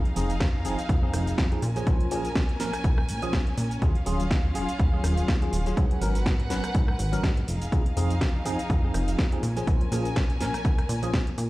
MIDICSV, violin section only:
0, 0, Header, 1, 2, 480
1, 0, Start_track
1, 0, Tempo, 487805
1, 1838, Time_signature, 4, 2, 24, 8
1, 11313, End_track
2, 0, Start_track
2, 0, Title_t, "Violin section"
2, 0, Program_c, 0, 48
2, 0, Note_on_c, 0, 63, 86
2, 0, Note_on_c, 0, 68, 74
2, 0, Note_on_c, 0, 77, 90
2, 1581, Note_off_c, 0, 68, 0
2, 1582, Note_off_c, 0, 63, 0
2, 1582, Note_off_c, 0, 77, 0
2, 1598, Note_on_c, 0, 61, 87
2, 1600, Note_on_c, 0, 80, 95
2, 1601, Note_on_c, 0, 70, 75
2, 3738, Note_off_c, 0, 70, 0
2, 3738, Note_off_c, 0, 80, 0
2, 3754, Note_on_c, 0, 65, 77
2, 3756, Note_on_c, 0, 77, 92
2, 3758, Note_on_c, 0, 68, 74
2, 5657, Note_off_c, 0, 65, 0
2, 5658, Note_off_c, 0, 77, 0
2, 5659, Note_off_c, 0, 68, 0
2, 5682, Note_on_c, 0, 70, 78
2, 5683, Note_on_c, 0, 71, 75
2, 5684, Note_on_c, 0, 78, 94
2, 7319, Note_off_c, 0, 61, 0
2, 7343, Note_off_c, 0, 70, 0
2, 7344, Note_off_c, 0, 71, 0
2, 7344, Note_off_c, 0, 78, 0
2, 7363, Note_on_c, 0, 63, 85
2, 7363, Note_on_c, 0, 68, 73
2, 7363, Note_on_c, 0, 77, 90
2, 9261, Note_off_c, 0, 63, 0
2, 9261, Note_off_c, 0, 77, 0
2, 9262, Note_off_c, 0, 68, 0
2, 9277, Note_on_c, 0, 61, 81
2, 9279, Note_on_c, 0, 80, 92
2, 9280, Note_on_c, 0, 70, 75
2, 11313, Note_off_c, 0, 61, 0
2, 11313, Note_off_c, 0, 70, 0
2, 11313, Note_off_c, 0, 80, 0
2, 11313, End_track
0, 0, End_of_file